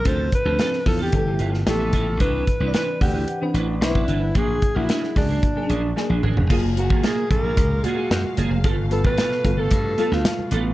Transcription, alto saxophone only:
\new Staff \with { instrumentName = "Alto saxophone" } { \time 4/4 \key ges \lydian \tempo 4 = 112 c''8 ces''4 a'16 g'4 r16 a'4 | b'4 b'8 g'4 r8 e'4 | aes'8. fes'8. d'2 r8 | r8 ges'8 aes'8 bes'4 ges'4 r8 |
r8 a'16 b'4 a'4 f'8. r8 | }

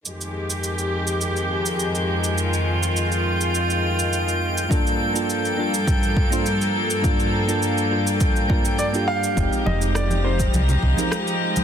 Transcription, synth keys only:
\new Staff \with { instrumentName = "Synth keys" } { \time 4/4 \key f \dorian \tempo 4 = 103 r1 | r1 | <bes d' f' a'>8. <bes d' f' a'>8. <bes d' f' a'>16 r4 <bes d' f' c''>16 r4 | <bes d' f' a'>8. <bes d' f' a'>8. <bes d' f' a'>4 <bes d' f' bes'>16 r8 <bes d' f' g'>8. |
<aes c' ees' g'>8. <aes c' ees' g'>8. <aes c' ees' g'>16 r4 <aes c' ees' bes'>16 r4 | }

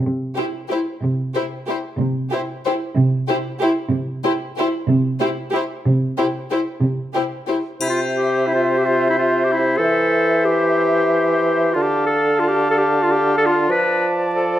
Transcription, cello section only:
\new Staff \with { instrumentName = "Cello section" } { \clef bass \time 3/4 \key c \major \tempo 4 = 184 c4 r2 | c4 r2 | c4 r2 | c4 r2 |
c4 r2 | c4 r2 | c4 r2 | c4 r2 |
r2. | r2. | r2. | r2. |
r2. | r2. | r2. | }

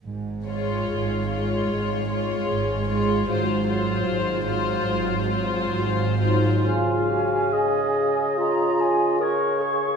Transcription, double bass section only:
\new Staff \with { instrumentName = "Double bass section" } { \clef bass \time 4/4 \key des \major \tempo 4 = 73 aes,,4 aes,,4 aes,,4 aes,,4 | aes,,4 aes,,4 aes,,4 aes,,4 | r1 | }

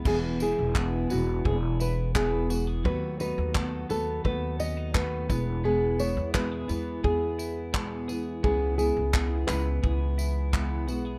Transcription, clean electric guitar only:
\new Staff \with { instrumentName = "Clean electric guitar" } { \time 4/4 \key e \major \tempo 4 = 86 e8 e'8 gis'8 b8 gis'8 e'8 b8 fis'16 gis'16 | fis8 dis'8 a'8 b8 a'8 cis'16 dis'16 b8 b8 | b8 e'8 fis'16 gis'16 b8 gis'8 e'8 b8 gis'8 | b8 e'8 gis'8 b8 gis'8 e'8 b8 fis'16 gis'16 | }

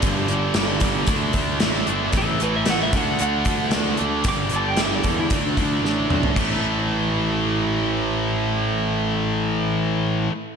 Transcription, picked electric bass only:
\new Staff \with { instrumentName = "Picked electric bass" } { \clef bass \time 4/4 \key d \major \tempo 4 = 114 g,,8 g,,8 g,,8 g,,8 d,8 d,8 a,,8 g,,8 | a,,8 a,,8 a,,8 d,8 d,8 d,8 d,8 d,8 | g,,8 g,,8 g,,8 e,8 d,8 d,8 a,,8 b,,8 | a,,1~ |
a,,1 | }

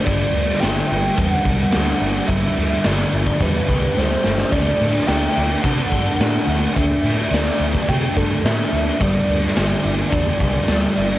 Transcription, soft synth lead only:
\new Staff \with { instrumentName = "Soft synth lead" } { \time 4/4 \key g \major \tempo 4 = 107 d''4 g''4 fis''2 | e''4 d''4 b'8 b'8 c''4 | d''4 g''4 fis''2 | e''4 d''4 g''8 a'8 e''4 |
d''1 | }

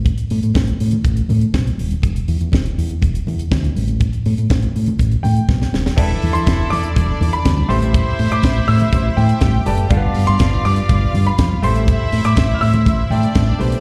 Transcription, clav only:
\new Staff \with { instrumentName = "Clav" } { \time 4/4 \key a \minor \tempo 4 = 122 r1 | r1 | r1 | <e e' gis' a' d''>4. r2 <a g' a' c''>8~ |
<a g' a' c''>4 r2 r8 <a g' b' d''>8 | <g b d' f' a'>4. r2 <a g' a' c''>8~ | <a g' a' c''>4 r2 r8 <a g' b' c''>8 | }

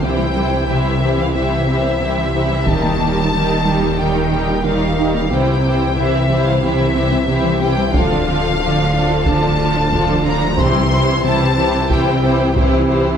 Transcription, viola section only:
\new Staff \with { instrumentName = "Viola section" } { \time 4/4 \key c \mixolydian \tempo 4 = 91 <e e'>8 <e e'>8 <e e'>8 <e e'>8 <e e'>8 <e e'>8 <e e'>8 <e e'>8 | <g ees'>8 <g ees'>8 <g ees'>8 <g ees'>8 <g ees'>8 <g ees'>8 <g ees'>8 <g ees'>8 | <e e'>8 <e e'>8 <e e'>8 <e e'>8 <e e'>8 <e e'>8 <e e'>8 <e e'>8 | <f d'>8 <f d'>8 <f d'>8 <f d'>8 <f d'>8 <f d'>8 <f d'>8 <f d'>8 |
<e e'>8 <e e'>8 <e e'>8 <e e'>8 <e e'>8 <e e'>8 <e e'>8 <e e'>8 | }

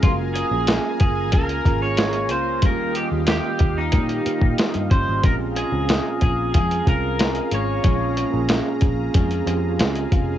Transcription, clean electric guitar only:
\new Staff \with { instrumentName = "Clean electric guitar" } { \time 4/4 \key bes \minor \tempo 4 = 92 f'8 aes'4 aes'8 bes'8. des''8. c''8 | bes'8 g'8 g'8. ees'4.~ ees'16 c''8 | bes'8 aes'4 aes'8 aes'8 bes'4 des''8~ | des''4. r2 r8 | }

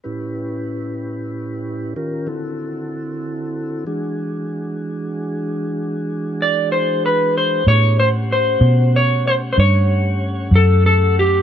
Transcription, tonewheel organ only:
\new Staff \with { instrumentName = "Tonewheel organ" } { \time 12/8 \key e \mixolydian \tempo 4. = 63 <a, cis' e' g' b'>2. <dis cis' f' g' bes'>8 <d c' e' fis' a'>2~ <d c' e' fis' a'>8 | <e gis d' fis' gis'>1. | \key a \mixolydian <b d' g' gis'>8 <a cis' g' fis''>1~ <a cis' g' fis''>4. | }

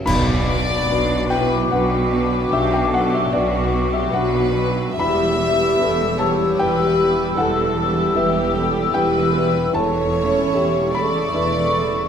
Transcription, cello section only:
\new Staff \with { instrumentName = "Cello section" } { \clef bass \time 3/4 \key b \minor \tempo 4 = 75 b,4 b,4 b,4 | b,4 b,4 b,4 | e,4 e,4 e,4 | e,4 e,4 e,4 |
e,4 e,4 e,4 | }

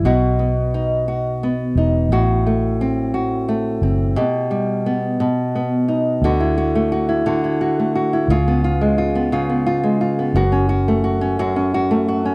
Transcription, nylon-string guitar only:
\new Staff \with { instrumentName = "Nylon-string guitar" } { \time 6/8 \key d \mixolydian \tempo 4. = 58 <b, fis'>8 b8 dis'8 fis'8 b8 dis'8 | <a, fis'>8 a8 c'8 fis'8 a8 c'8 | <b, g'>8 g8 b8 b,8 b8 dis'8 | <d fis'>16 e'16 fis'16 a16 fis'16 e'16 <d fis'>16 e'16 fis'16 a16 fis'16 e'16 |
<cis eis'>16 b16 eis'16 gis16 eis'16 b16 <cis eis'>16 b16 eis'16 gis16 eis'16 b16 | <fis, fis'>16 cis'16 fis'16 a16 fis'16 cis'16 <fis, fis'>16 cis'16 fis'16 a16 fis'16 cis'16 | }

